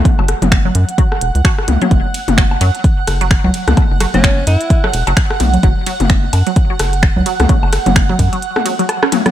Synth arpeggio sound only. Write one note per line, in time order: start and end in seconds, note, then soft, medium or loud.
0.19 0.23 F#3 medium
0.65 0.70 F#3 medium
0.98 1.04 F#3 medium
1.45 1.51 F#4 medium
1.82 1.86 F#3 medium
2.38 2.44 F#3 medium
2.61 2.67 F#3 medium
3.21 3.25 F#3 medium
3.44 3.49 F#3 medium
4.00 4.07 F#3 medium
4.24 4.30 F#3 medium
4.84 4.88 F#3 medium
5.07 5.12 F#3 medium
5.63 5.69 F#3 medium
5.87 5.93 F#3 medium
6.47 6.51 F#3 medium
6.70 6.74 F#3 medium
7.26 7.32 F#3 medium
7.49 7.55 F#3 medium
8.09 8.14 F#3 medium
8.33 8.37 F#3 medium
8.65 8.75 F#3 medium
8.79 8.82 F#3 medium
9.03 9.07 C#4 medium
9.12 9.21 F#3 loud